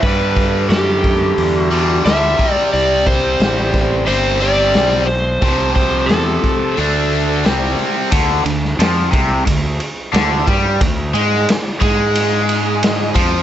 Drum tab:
RD |----------------|----------------|----------------|x-x-x-x-x-x-x-x-|
HH |o-o-o-o-o-o-o-o-|o-o-o-o-o-o-o-o-|o-o-o-o-o-o-o-o-|----------------|
SD |----o-------o---|----o-------o---|----o-------o---|---oo-------o---|
BD |o-o---o-------o-|--o---o---------|o-o---o---------|o-----o-o-----o-|

RD |x-x-x-x-x-x-x-x-|
HH |----------------|
SD |---oo-------o---|
BD |o-----o-------o-|